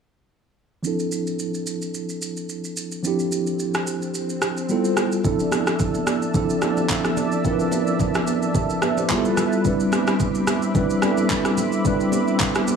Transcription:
0.83 F3 C4 D4 E4, shaker
0.87 A4
0.99 shaker
1.12 shaker
1.27 shaker
1.39 shaker
1.54 shaker
1.67 shaker
1.82 shaker
1.94 shaker
2.09 shaker
2.22 shaker
2.37 shaker
2.49 shaker
2.65 shaker
2.77 shaker
2.92 shaker
3.03 F3 C4 D4 E4, swell, shaker
3.08 G4
3.19 shaker
3.32 shaker
3.47 shaker
3.59 shaker
3.74 cross-stick, shaker
3.87 shaker
4.02 shaker
4.14 shaker
4.30 shaker
4.42 cross-stick, shaker
4.57 shaker
4.69 G3 B3 E4 F4 A4, shaker
4.85 shaker
4.97 cross-stick, shaker
5.12 shaker
5.24 F3 C4 D4 E4 A4 D5 E5 A5 E6, kick, shaker
5.40 shaker
5.52 cross-stick, high conga, shaker
5.67 cross-stick, shaker
5.79 kick, low conga, shaker
5.94 high conga, shaker
6.07 cross-stick, high conga, shaker
6.22 shaker
6.34 F3 C4 D4 E4 A4, kick, low conga, shaker
6.50 shaker
6.62 F3 C4 D4 E4 A4, cross-stick, high conga, shaker
6.77 high conga, shaker
6.89 kick, clap, low conga, shaker
7.04 cross-stick, high conga, shaker
7.17 high conga, low conga, shaker
7.32 shaker
7.44 F3 C4 D4 E4 A#4, kick, shaker
7.53 B4
7.60 shaker
7.72 high conga, shaker
7.87 shaker
7.99 kick, low conga, shaker
8.15 cross-stick, high conga, shaker
8.27 high conga, shaker
8.42 shaker
8.54 E5 A5, kick, low conga, shaker
8.70 shaker
8.82 B4 E5, cross-stick, high conga, shaker
8.97 G4 C5, high conga, shaker
9.09 G3 B3 E4 F4 G#4 B4 E5 A5, kick, clap, low conga, shaker
9.18 A4
9.25 high conga, shaker
9.37 cross-stick, high conga, low conga, shaker
9.52 shaker
9.65 G3 C4 D4 E4 B4 E5 B5 D6, kick, shaker
9.80 shaker
9.92 cross-stick, high conga, shaker
10.07 cross-stick, shaker
10.20 kick, low conga, shaker
10.35 high conga, shaker
10.47 cross-stick, high conga, shaker
10.63 shaker
10.75 G3 C4 D4 E4 B4, kick, low conga, shaker
10.90 shaker
11.02 G3 C4 D4 E4 A4, cross-stick, high conga, shaker
11.11 B4
11.18 high conga, shaker
11.30 kick, clap, low conga, shaker
11.45 cross-stick, high conga, shaker
11.58 high conga, low conga, shaker
11.73 shaker
11.85 G3 C4 D4 E4 B4, kick, shaker
12.00 shaker
12.12 high conga, shaker
12.28 shaker
12.40 kick, clap, low conga, shaker
12.55 cross-stick, high conga, shaker
12.68 high conga, shaker

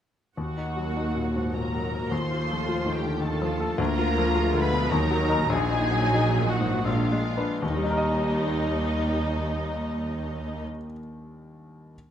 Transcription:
0.37 D#2 A#3 F#4 F#5
0.57 D#4
0.76 F#3
0.96 D#4
1.15 A#2
1.36 G#2
1.53 A#2 A#3 F#4 A#4 A#5
1.74 F#3
1.94 A#4
2.11 D#2 A3 F4 C5 C6
2.32 F4
2.51 F3
2.68 F4
2.86 D#3
2.93 G4 G5
3.03 D3
3.21 D#3 A3 F4 A4 A5
3.42 F3
3.60 A4
3.78 D2 A#3 F4 A#4 A#5
3.98 F4
4.18 F3
4.34 G#3 F4
4.53 D3
4.62 B4 B5
4.71 B2
4.90 D#2 F#3 D#4 A#4 A#5
5.11 F#3
5.29 D#4 A#4
5.49 A#1 A#2 F#3 D#4 G#4 G#5
5.70 D#4
5.91 F#3
6.14 D#4
6.38 A#2
6.48 F#4 F#5
6.60 G#2
6.84 A#1 A#2 G#3 D4 F4 F5
7.12 G#3
7.37 D4 B4
7.61 D#2 G3 D#4 D#5
7.70 D#3
7.76 G3
7.84 D#4
7.90 A#4
7.98 D#5

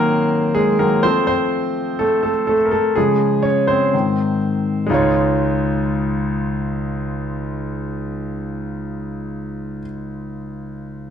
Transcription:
Already playing: D#3 F#3 A#3 C4 C#4 A#4 C5 C#5
0.55 G#3 G#4
0.79 D#3 F#3 A#3 A#4
1.03 F3 A3 C4 C5
1.27 C4 C5
1.99 A3 A4
2.23 A3 A4
2.47 A3 A4
2.66 A#4
2.71 A3 A4
2.96 C#3 F3 G#3 G#4
3.43 C#4 C#5
3.67 C4 C5
3.93 G#2 D#3 C4
4.86 C#2 G#3 D#4
4.91 F4 C#5

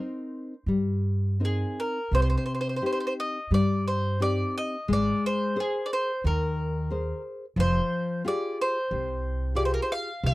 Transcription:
Already playing: C4 D#4 A#4 C5
0.66 G2 G3
1.40 C4 D#4 A#4
1.45 G#4
1.80 A#4
2.11 C2 C3 C5
2.22 C5
2.30 C5
2.37 C5
2.46 C5
2.55 C5
2.61 C5
2.69 C5
2.76 C5
2.82 C4 D#4 G4
2.86 C5
2.93 C5
3.00 C5
3.07 C5
3.20 D#5
3.51 G2 G3 D5
3.88 C5
4.20 C4 D#4 G4 D5
4.58 D#5
4.88 G#1 G#3
4.93 D5
5.26 C5
5.56 G#4 A#4 C5
5.60 G#4
5.86 D5
5.93 C5
6.24 D#2 D#3 A#4
6.90 G#4 A#4 C5
7.56 F1 F3 C5
8.25 F4 G4 G#4 D5
8.61 C5
8.91 C2 C3
9.55 F4 G4 G#4 D5
9.65 C5
9.74 A#4
9.82 C5
9.92 F5
10.23 C2 C3 D#5

